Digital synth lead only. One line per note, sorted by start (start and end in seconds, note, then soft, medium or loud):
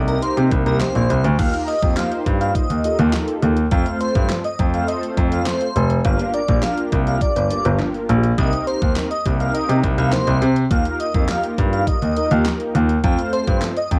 0.07 0.20 A#4 medium
0.22 0.35 C5 medium
0.66 0.79 A#4 medium
0.80 1.21 C5 medium
1.39 1.64 F5 loud
1.68 1.93 D#5 medium
1.97 2.10 F5 medium
2.41 2.53 F5 loud
2.55 2.81 D#5 medium
2.84 2.97 D#5 medium
3.72 3.97 F5 loud
4.01 4.27 C5 loud
4.45 4.57 D#5 medium
4.74 4.86 F5 medium
4.88 5.01 D#5 medium
5.32 5.45 F5 medium
5.47 5.88 C5 medium
6.05 6.30 F5 loud
6.34 6.60 D5 medium
6.63 6.76 F5 medium
7.07 7.20 F5 medium
7.22 7.47 D5 medium
7.50 7.63 D5 medium
8.38 8.63 D#5 loud
8.67 8.92 C5 loud
9.10 9.23 D#5 medium
9.40 9.53 F5 medium
9.54 9.67 D#5 medium
9.98 10.11 F5 medium
10.13 10.54 C5 medium
10.71 10.96 F5 loud
11.00 11.26 D#5 medium
11.29 11.42 F5 medium
11.73 11.86 F5 medium
11.87 12.13 D#5 medium
12.17 12.29 D#5 medium
13.04 13.29 F5 loud
13.33 13.59 C5 loud
13.77 13.90 D#5 medium